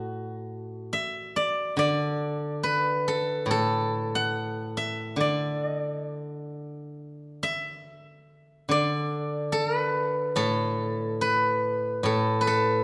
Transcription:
0.00 0.91 A2 soft
0.00 1.75 F#4 medium
0.00 0.68 A4 medium
0.93 2.65 E5 medium
1.36 1.78 D5 medium
1.77 4.32 D3 medium
1.77 3.63 D5 medium
2.63 4.68 B4 medium
3.08 3.50 A4 medium
3.46 5.17 A2 soft
3.51 5.70 A4 medium
4.15 5.76 F#5 medium
4.77 6.49 E5 medium
5.16 7.85 D3 soft
5.20 5.66 D5 medium
5.66 5.79 D#5 medium
5.79 5.92 D5 medium
5.92 6.05 D#5 medium
6.05 7.05 D5 medium
7.43 9.15 E5 medium
8.69 11.23 D3 soft
8.69 10.56 D5 medium
9.52 9.76 A4 medium
9.76 11.21 B4 medium
10.36 12.02 A2 soft
10.36 12.05 A4 medium
11.21 12.40 B4 medium
12.03 12.84 A2 soft
12.03 12.47 A4 medium
12.41 12.84 B4 medium
12.47 12.84 A4 medium

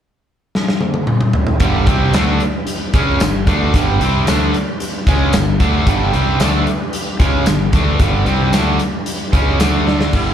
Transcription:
0.55 snare medium
0.68 snare medium
0.81 high tom medium
0.94 high tom medium
1.07 mid tom medium
1.21 mid tom medium
1.33 floor tom loud
1.47 floor tom loud
1.60 1.86 G1 medium
1.60 1.86 G2 medium
1.60 1.86 D3 loud
1.60 1.86 G3 loud
1.60 5.83 D4 medium
1.60 5.83 B4 medium
1.60 5.83 G5 medium
1.60 kick loud
1.60 closed hi-hat loud
1.87 2.12 C2 medium
1.87 2.13 C3 medium
1.87 2.13 G3 medium
1.87 2.13 C4 loud
1.87 kick loud
1.87 closed hi-hat medium
2.13 2.38 D2 medium
2.13 2.40 D3 medium
2.13 2.40 A3 loud
2.13 2.40 D4 loud
2.13 snare loud
2.13 closed hi-hat medium
2.13 tambourine loud
2.40 closed hi-hat medium
2.67 closed hi-hat loud
2.93 3.19 C#2 medium
2.93 3.20 C#3 medium
2.93 3.20 G#3 loud
2.93 3.21 C#4 loud
2.93 kick loud
2.93 closed hi-hat medium
3.20 3.45 G1 medium
3.20 3.42 G2 medium
3.20 3.43 D3 medium
3.20 snare loud
3.20 closed hi-hat loud
3.20 tambourine loud
3.47 3.72 D2 medium
3.47 3.73 D3 medium
3.47 3.74 A3 medium
3.47 3.74 D4 loud
3.47 kick loud
3.47 closed hi-hat medium
3.74 3.99 G1 medium
3.74 4.00 G2 loud
3.74 4.00 D3 loud
3.74 4.00 G3 loud
3.74 kick loud
3.74 closed hi-hat loud
4.01 4.25 C2 loud
4.01 4.26 C3 medium
4.01 4.27 G3 medium
4.01 4.27 C4 medium
4.01 closed hi-hat medium
4.27 4.52 D2 loud
4.27 4.53 D3 medium
4.27 4.53 A3 medium
4.27 4.54 D4 loud
4.27 snare loud
4.27 closed hi-hat medium
4.27 tambourine loud
4.54 closed hi-hat medium
4.80 closed hi-hat medium
5.07 5.32 C#2 medium
5.07 5.33 C#3 loud
5.07 5.33 G#3 medium
5.07 5.34 C#4 loud
5.07 kick loud
5.07 closed hi-hat medium
5.33 5.59 G1 medium
5.33 5.55 G2 medium
5.33 5.56 D3 medium
5.33 snare loud
5.33 closed hi-hat loud
5.33 tambourine loud
5.60 5.85 D2 medium
5.60 5.86 D3 medium
5.60 5.87 A3 medium
5.60 5.87 D4 medium
5.60 kick loud
5.60 closed hi-hat medium
5.86 6.11 G1 medium
5.86 6.13 G2 medium
5.86 6.13 D3 loud
5.86 6.13 G3 loud
5.86 9.56 D4 medium
5.86 9.56 G4 medium
5.86 9.56 B4 medium
5.86 kick loud
5.86 closed hi-hat loud
6.13 6.38 C2 loud
6.13 6.39 C3 medium
6.13 6.40 G3 medium
6.13 6.40 C4 loud
6.13 closed hi-hat medium
6.40 6.65 D2 loud
6.40 6.66 D3 loud
6.40 6.66 A3 medium
6.40 6.66 D4 loud
6.40 snare loud
6.40 closed hi-hat loud
6.40 tambourine loud
6.67 closed hi-hat medium
6.93 closed hi-hat loud
7.20 7.45 C#2 loud
7.20 7.46 C#3 loud
7.20 7.46 G#3 medium
7.20 7.46 C#4 loud
7.20 kick loud
7.20 closed hi-hat medium
7.46 7.71 G1 medium
7.46 7.68 G2 medium
7.46 7.68 D3 medium
7.46 snare loud
7.46 closed hi-hat loud
7.46 tambourine loud
7.73 7.98 D2 medium
7.73 7.99 D3 medium
7.73 7.99 A3 medium
7.73 8.00 D4 loud
7.73 kick loud
7.73 closed hi-hat medium
7.99 8.24 G1 loud
7.99 8.25 G2 loud
7.99 8.25 D3 loud
7.99 8.25 G3 loud
7.99 kick loud
7.99 closed hi-hat loud
8.25 8.51 C2 loud
8.25 8.52 C3 medium
8.25 8.52 G3 loud
8.25 8.52 C4 loud
8.25 closed hi-hat medium
8.52 8.78 D2 loud
8.52 8.78 D3 loud
8.52 8.79 A3 loud
8.52 8.79 D4 medium
8.52 snare loud
8.52 closed hi-hat medium
8.52 tambourine loud
8.79 closed hi-hat medium
9.06 closed hi-hat loud
9.33 9.58 C#2 medium
9.33 9.59 C#3 medium
9.33 9.59 G#3 loud
9.33 9.60 C#4 loud
9.33 kick loud
9.33 closed hi-hat medium
9.60 10.10 D2 medium
9.60 10.13 D3 medium
9.60 10.13 A3 medium
9.60 10.13 D4 medium
9.60 10.13 D4 loud
9.60 10.13 A4 medium
9.60 10.13 A5 medium
9.60 snare loud
9.60 closed hi-hat loud
9.60 tambourine loud
9.86 10.14 D4 medium
9.86 snare medium
10.01 snare loud
10.13 10.34 G1 medium
10.13 10.34 G2 medium
10.13 10.34 D3 medium
10.13 10.34 G3 loud
10.13 10.34 E4 loud
10.13 kick loud
10.13 crash medium

